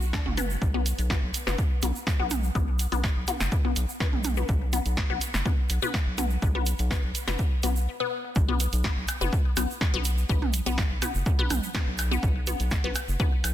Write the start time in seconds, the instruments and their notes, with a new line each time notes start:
Already playing: analog synth bass B1
0.01 shaker
0.13 synth arpeggio sound D4, kick, snare, shaker
0.26 analog synth bass F#1, synth arpeggio sound F#4, mid tom, high tom
0.37 synth arpeggio sound B3, closed hi-hat, mid tom, shaker
0.50 shaker
0.62 analog synth bass B1, kick, shaker
0.74 synth arpeggio sound B3, high tom
0.86 closed hi-hat, shaker
0.98 analog synth bass B1, closed hi-hat, shaker
1.10 synth arpeggio sound B3, kick, snare, high tom, shaker
1.23 analog synth bass B1
1.34 closed hi-hat, shaker
1.47 analog synth bass F#1, synth arpeggio sound B3, snare, high tom, shaker
1.58 kick, shaker
1.82 analog synth bass B1, synth arpeggio sound B3, closed hi-hat, high tom, shaker
1.95 shaker
2.07 kick, snare, shaker
2.19 analog synth bass B1, synth arpeggio sound B3, high tom
2.30 closed hi-hat, mid tom, shaker
2.43 shaker
2.55 analog synth bass B1, synth arpeggio sound B3, kick, high tom, shaker
2.79 closed hi-hat, shaker
2.92 analog synth bass B1, synth arpeggio sound B3, closed hi-hat, high tom, shaker
3.04 kick, snare, shaker
3.16 analog synth bass B1
3.28 synth arpeggio sound B3, closed hi-hat, high tom, shaker
3.40 analog synth bass F#1, snare, shaker
3.52 kick, shaker
3.65 synth arpeggio sound B3, high tom
3.76 analog synth bass B1, closed hi-hat, shaker
3.89 shaker
4.00 synth arpeggio sound B3, kick, snare, high tom, shaker
4.13 analog synth bass B1, mid tom
4.24 closed hi-hat, mid tom, shaker
4.37 synth arpeggio sound B3, high tom, shaker
4.48 analog synth bass B1, kick, shaker
4.73 synth arpeggio sound B3, closed hi-hat, high tom, shaker
4.85 analog synth bass B1, closed hi-hat, shaker
4.97 kick, snare, shaker
5.10 analog synth bass B1, synth arpeggio sound B3, high tom
5.21 closed hi-hat, shaker
5.34 analog synth bass F#1, snare, shaker
5.46 synth arpeggio sound B3, kick, high tom, shaker
5.70 analog synth bass B1, closed hi-hat, shaker
5.82 synth arpeggio sound B3, high tom, shaker
5.94 kick, snare, shaker
6.07 analog synth bass B1
6.18 synth arpeggio sound B3, closed hi-hat, mid tom, high tom, shaker
6.30 shaker
6.42 analog synth bass B1, kick, shaker
6.55 synth arpeggio sound B3, high tom
6.66 closed hi-hat, shaker
6.79 analog synth bass B1, closed hi-hat, shaker
6.91 synth arpeggio sound B3, kick, snare, high tom, shaker
7.03 analog synth bass B1
7.15 closed hi-hat, shaker
7.28 analog synth bass F#1, synth arpeggio sound B3, snare, closed hi-hat, high tom, shaker
7.39 kick, shaker
7.63 analog synth bass B1, synth arpeggio sound B3, closed hi-hat, high tom, shaker
7.76 shaker
8.00 synth arpeggio sound B3
8.36 analog synth bass B1, kick, shaker
8.48 synth arpeggio sound B3, high tom
8.60 closed hi-hat, shaker
8.73 analog synth bass B1, closed hi-hat, shaker
8.84 synth arpeggio sound B3, kick, snare, high tom, shaker
8.97 analog synth bass B1
9.08 closed hi-hat, percussion blips, shaker
9.21 analog synth bass F#1, synth arpeggio sound B3, high tom, shaker
9.33 kick, shaker
9.57 analog synth bass B1, synth arpeggio sound B3, closed hi-hat, high tom, percussion blips, shaker
9.70 shaker
9.81 kick, snare, shaker
9.94 analog synth bass B1, synth arpeggio sound B3, high tom
10.05 closed hi-hat, shaker
10.18 shaker
10.29 analog synth bass B1, synth arpeggio sound B3, kick, high tom, shaker
10.42 mid tom
10.53 closed hi-hat, shaker
10.66 analog synth bass B1, synth arpeggio sound B3, closed hi-hat, high tom, shaker
10.78 kick, snare, shaker
10.91 analog synth bass B1
11.02 synth arpeggio sound B3, closed hi-hat, high tom, percussion blips, shaker
11.15 analog synth bass F#1, shaker
11.26 kick, shaker
11.39 synth arpeggio sound B3, high tom
11.50 analog synth bass B1, closed hi-hat, mid tom, percussion blips, shaker
11.63 shaker
11.74 synth arpeggio sound B3, kick, snare, high tom, shaker
11.87 analog synth bass B1
11.98 closed hi-hat, percussion blips, shaker
12.11 synth arpeggio sound B3, high tom, shaker
12.23 analog synth bass B1, kick, shaker
12.47 synth arpeggio sound B3, closed hi-hat, high tom, shaker
12.60 analog synth bass B1, closed hi-hat, shaker
12.71 kick, snare, shaker
12.84 analog synth bass B1, synth arpeggio sound B3, high tom
12.95 closed hi-hat, percussion blips, shaker
13.08 analog synth bass F#1, shaker
13.19 synth arpeggio sound B3, kick, high tom, shaker
13.44 analog synth bass B1, closed hi-hat, percussion blips, shaker